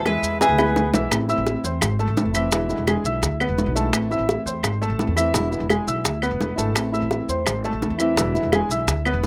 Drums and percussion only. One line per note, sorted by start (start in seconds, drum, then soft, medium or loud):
0.05 high bongo medium
0.05 claves medium
0.05 maracas soft
0.23 high bongo soft
0.23 maracas medium
0.41 high bongo medium
0.41 maracas medium
0.58 high bongo medium
0.58 claves medium
0.58 maracas soft
0.76 low bongo medium
0.76 maracas soft
0.94 low bongo loud
0.94 maracas medium
1.11 high bongo medium
1.11 claves medium
1.11 maracas medium
1.29 high bongo soft
1.29 maracas soft
1.47 high bongo medium
1.47 maracas soft
1.65 maracas medium
1.81 high bongo medium
1.81 claves medium
1.81 maracas medium
1.99 high bongo soft
1.99 maracas soft
2.17 high bongo soft
2.17 low bongo medium
2.17 maracas soft
2.35 high bongo soft
2.35 claves medium
2.35 maracas medium
2.52 high bongo medium
2.52 maracas medium
2.70 high bongo soft
2.70 maracas soft
2.87 high bongo medium
2.87 claves medium
2.87 maracas soft
3.05 maracas medium
3.23 high bongo medium
3.23 maracas medium
3.40 high bongo soft
3.40 claves medium
3.40 maracas soft
3.58 high bongo soft
3.58 low bongo medium
3.58 maracas soft
3.76 high bongo soft
3.76 maracas medium
3.93 high bongo medium
3.93 claves medium
3.93 maracas loud
4.11 high bongo soft
4.11 maracas soft
4.29 high bongo medium
4.29 maracas soft
4.47 maracas medium
4.63 high bongo medium
4.63 claves medium
4.63 maracas medium
4.82 high bongo soft
4.82 maracas soft
4.99 high bongo soft
4.99 low bongo medium
4.99 maracas soft
5.17 high bongo soft
5.17 claves medium
5.17 maracas medium
5.34 high bongo medium
5.34 maracas medium
5.52 high bongo soft
5.52 maracas soft
5.70 high bongo medium
5.70 claves medium
5.70 maracas soft
5.88 maracas medium
6.05 high bongo medium
6.05 maracas medium
6.22 high bongo soft
6.22 claves medium
6.22 maracas soft
6.41 high bongo soft
6.41 low bongo medium
6.41 maracas soft
6.58 high bongo soft
6.58 maracas medium
6.75 high bongo medium
6.75 claves medium
6.75 maracas medium
6.94 high bongo soft
6.94 maracas soft
7.11 high bongo medium
7.11 maracas soft
7.29 maracas medium
7.46 high bongo medium
7.46 claves medium
7.46 maracas medium
7.64 high bongo soft
7.64 maracas soft
7.82 high bongo soft
7.82 low bongo medium
7.82 maracas soft
7.99 high bongo soft
7.99 claves medium
7.99 maracas medium
8.17 high bongo medium
8.17 maracas loud
8.35 high bongo soft
8.35 maracas soft
8.52 high bongo medium
8.52 claves medium
8.52 maracas soft
8.71 maracas medium
8.88 high bongo medium
8.88 maracas medium
9.05 high bongo soft
9.05 claves medium
9.05 maracas soft
9.24 high bongo soft
9.24 low bongo medium
9.24 maracas soft